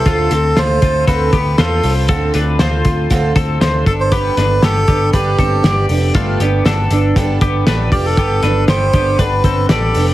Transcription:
<<
  \new Staff \with { instrumentName = "Melodica" } { \time 4/4 \key g \mixolydian \tempo 4 = 118 a'4 c''4 b'4 a'8. r16 | r2. r8 a'16 c''16 | b'4 a'4 g'4. r8 | r2. r8 g'16 a'16~ |
a'4 c''4 b'4 a'8. r16 | }
  \new Staff \with { instrumentName = "Clean electric guitar" } { \time 4/4 \key g \mixolydian <a f'>8 <c' a'>8 <a f'>8 <a f'>8 <c' a'>8 <b g'>8 <f' c''>4 | <c' a'>8 <d' b'>8 <f' c''>4. <c' a'>8 <f' c''>8 <d' a'>8 | <b g'>8 <d' b'>8 <b g'>8 <b g'>8 <d' b'>8 <c' a'>8 <g' d''>4 | <a f'>8 <b g'>8 <d' a'>4. <b g'>8 <d' b'>8 <f' d''>8 |
<b g'>8 <d' b'>8 <b g'>8 <b g'>8 <d' b'>8 <c' a'>8 <g' d''>4 | }
  \new Staff \with { instrumentName = "Twelve-string acoustic guitar" } { \time 4/4 \key g \mixolydian <d a c' f' a'>8 <c' f' a'>8 <a c' f' a'>8 <c' f' a'>8 <d a c' f' a'>8 <c' f' a'>8 <a c' f' a'>8 <c' f' a'>8 | <d a c' f' a'>8 <c' f' a'>8 <a c' f' a'>8 <c' f' a'>8 <d a c' f' a'>8 r8 <a c' f' a'>8 <b d' a'>8 | <g b d' a'>8 <b d' a'>8 <g b d' a'>8 <b d' a'>8 <g b d' a'>8 <b d' a'>8 <g b d' a'>8 <b d' a'>8 | <g b d' a'>8 <b d' a'>8 <g b d' a'>8 <b d' a'>8 <g b d' a'>8 <b d' a'>8 <g b d' a'>8 <b d' a'>8 |
<g b d' a'>8 <b d' a'>8 <g b d' a'>8 <b d' a'>8 <g b d' a'>8 <b d' a'>8 <g b d' a'>8 <b d' a'>8 | }
  \new Staff \with { instrumentName = "Picked electric bass" } { \clef bass \time 4/4 \key g \mixolydian d,8 d,8 d,8 d,8 d,8 d,8 e,8 c,8 | d,8 d,8 d,8 d,8 d,8 d,8 d,8 g,,8~ | g,,8 g,,8 g,,8 g,,8 g,,8 g,,8 g,,8 f,,8 | g,,8 g,,8 g,,8 g,,8 g,,8 g,,8 a,,8 f,,8 |
g,,8 g,,8 g,,8 g,,8 g,,8 g,,8 a,,8 f,,8 | }
  \new DrumStaff \with { instrumentName = "Drums" } \drummode { \time 4/4 <hh bd>8 hh8 <hh sn>8 <hh bd>8 <hh bd>8 <hh bd>8 <hh sn>8 hho8 | <hh bd>8 hh8 <hh sn>8 <hh bd>8 <hh bd>8 <hh bd>8 <hh sn>8 <hh bd>8 | <hh bd>8 <hh sn>8 <hh sn>8 <hh bd>8 <hh bd>8 <hh bd>8 <hh sn>8 hho8 | <hh bd>8 hh8 <hh sn>8 hh8 <hh bd>8 <hh bd>8 <hh sn>8 <hho bd>8 |
<hh bd>8 <hh sn>8 <hh sn>8 <hh bd>8 <hh bd>8 <hh bd>8 <hh sn>8 hho8 | }
>>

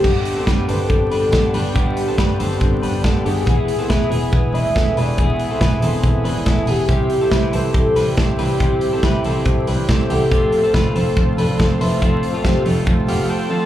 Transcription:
<<
  \new Staff \with { instrumentName = "Soft synth lead" } { \time 4/4 \key g \mixolydian \tempo 4 = 140 g'4 r8 b'8 a'4. g'8~ | g'8 r2. aes'8~ | aes'4. b'8 b'8 e''4 d''8 | e''2. r8 g'8~ |
g'4 r8 b'8 a'4. g'8~ | g'8 r2. a'8~ | a'4. c''8 c''8 a'4 b'8 | c''2. r4 | }
  \new Staff \with { instrumentName = "Clean electric guitar" } { \time 4/4 \key g \mixolydian <b g'>8. <c' a'>16 <d' b'>8 <c' a'>4 <d' b'>8 <d' a'>8 <d' b'>8 | <b g'>8. <c' a'>16 <d' b'>8 <c' a'>4 <d' b'>8 <d' a'>8 <b g'>8 | <b gis'>8. <c' a'>16 <e' b'>8 <b gis'>4 <d' b'>8 <e' a'>8 <d' b'>8 | <b gis'>8. <c' a'>16 <e' b'>8 <c' a'>4 <d' b'>8 <e' a'>8 <b gis'>8 |
<c' g'>8. <c' a'>16 <e' b'>8 <c' a'>4 <d' b'>8 <c' a'>8 <d' b'>8 | <c' g'>8. <c' a'>16 <e' b'>8 <c' a'>4 <d' b'>8 <c' a'>8 <b g'>8 | <c' g'>8. <c' a'>16 <f' b'>8 <c' a'>4 <d' b'>8 <c' a'>8 <e' c''>8 | <c' a'>8. <a f'>16 <c' g'>8 <a f'>4 <b g'>8 <c' a'>8 <c' a'>8 | }
  \new Staff \with { instrumentName = "Transistor combo organ" } { \time 4/4 \key g \mixolydian << { r1 | r1 | r1 | r1 |
r1 | r1 | r1 | r2 r8 f''8 g''8 a''8 | } \\ { <b d' g'>1~ | <b d' g'>1 | <b e' gis'>1~ | <b e' gis'>1 |
<c' e' g'>1~ | <c' e' g'>1 | <c' f' a'>1~ | <c' f' a'>1 | } >> }
  \new Staff \with { instrumentName = "Clean electric guitar" } { \time 4/4 \key g \mixolydian <g, d g b d'>8. <g b d'>8. <d g b d'>8 <d g b d'>8. <g, d g b d'>8. <g, d g b d'>8 | <g, d g b d'>8. <g b d'>8. <d g b d'>8 <d g b d'>8. <g, d g b d'>8. <g, d g b d'>8 | <e gis b e'>8. <gis b e'>8. <e gis b e'>8 <e gis b e'>8. <e gis b e'>8. <e gis b e'>8 | <e gis b e'>8. <gis b e'>8. <e gis b e'>8 <e gis b e'>8. <e gis b e'>8. <e gis b e'>8 |
<c e g c' e'>8. <g c' e'>8. <e g c' e'>8 <e g c' e'>8. <c e g c' e'>8. <c e g c' e'>8 | <c e g c' e'>8. <g c' e'>8. <e g c' e'>8 <e g c' e'>8. <c e g c' e'>8. <c e g c' e'>8 | <f a c' f'>8. <a c' f'>8. <f a c' f'>8 <f a c' f'>8. <f a c' f'>8. <f a c' f'>8 | <f a c' f'>8. <a c' f'>8. <f a c' f'>8 <f a c' f'>8. <f a c' f'>8. <f a c' f'>8 | }
  \new Staff \with { instrumentName = "Double bass" } { \clef bass \time 4/4 \key g \mixolydian g,,4 g,,8 g,,8 g,,8 g,,8 g,,8 g,,8 | g,,4 g,,8 g,,8 g,,8 g,,8 g,,8 g,,8 | e,,4 e,,8 e,,8 e,,8 e,,8 e,,8 e,,8 | e,,4 e,,8 e,,8 e,,8 e,,8 e,,8 e,,8 |
c,4 c,8 c,8 c,8 c,8 c,8 c,8 | c,4 c,8 c,8 c,8 c,8 c,8 c,8 | f,,4 f,,8 f,,8 f,,8 f,,8 f,,8 f,,8 | f,,4 f,,8 f,,8 f,,8 f,,8 r4 | }
  \new DrumStaff \with { instrumentName = "Drums" } \drummode { \time 4/4 <cymc bd>8 hho8 <hh bd sn>8 hho8 <hh bd>8 hho8 <hh bd sn>8 hho8 | <hh bd>8 hho8 <bd sn>8 hho8 <hh bd>8 hho8 <bd sn>8 hho8 | <hh bd>8 hho8 <hh bd sn>8 hho8 <hh bd>8 hho8 <hh bd sn>8 hho8 | <hh bd>8 hho8 <hh bd sn>8 hho8 <hh bd>8 hho8 <hh bd sn>8 hho8 |
<hh bd>8 hho8 <hh bd sn>8 hho8 <hh bd>8 hho8 <bd sn>8 hho8 | <hh bd>8 hho8 <hh bd sn>8 hho8 <hh bd>8 hho8 <hh bd sn>8 hho8 | <hh bd>8 hho8 <hh bd sn>8 hho8 <hh bd>8 hho8 <hh bd sn>8 hho8 | <hh bd>8 hho8 <hh bd sn>8 hho8 <hh bd>8 hho8 r4 | }
>>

